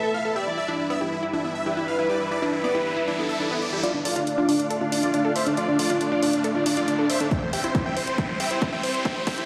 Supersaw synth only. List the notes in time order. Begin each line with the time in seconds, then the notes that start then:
0.03 A4
0.14 F5
0.25 A4
0.36 E5
0.47 E4
0.58 E5
0.68 E4
0.79 E4
0.90 E5
1.01 E4
1.12 E4
1.33 E4
1.44 E4
1.55 E5
1.66 E4
1.77 E4
1.88 F5
1.99 E4
2.09 D5
2.20 E4
2.31 D5
2.42 E4
2.53 E4
2.64 D5
2.75 E4
2.86 E4
3.08 E4
3.18 E4
3.29 E5
3.40 E4
3.51 E4
3.62 D5
3.72 E4
3.83 F4 D5
3.94 D4
4.05 F4 D5
4.16 D4
4.27 D4
4.38 F4 D5
4.49 D4
4.59 D4
4.81 D4
4.92 D4
5.03 F4 D5
5.14 D4
5.25 D4
5.36 C5 E5
5.47 D4
5.57 F4 D5
5.68 D4
5.79 F4 D5
5.90 D4
6.01 D4
6.12 F4 D5
6.23 D4
6.34 D4
6.55 D4
6.66 D4
6.77 F4 D5
6.88 D4
6.99 D4
7.10 C5 E5
7.20 D4
7.31 E5 G5
7.42 C5
7.53 E5 G5
7.64 C5
7.75 C5
7.86 E5 G5
7.97 C5
8.07 C5
8.18 E5 G5
8.29 C5
8.40 E5 G5
8.51 C5
8.62 C5
8.72 E5 G5
8.83 C5
8.94 C5
9.05 E5 G5
9.16 C5
9.27 E5 G5
9.38 C5